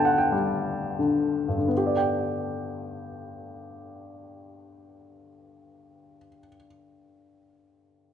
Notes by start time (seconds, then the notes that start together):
Already playing: G2 D3 B3 B4 G5 A5
0.05 F#5
0.18 G5
0.32 G3
0.99 D3
1.48 G2
1.58 D3
1.68 B3
1.77 G4
1.87 D5
1.97 G5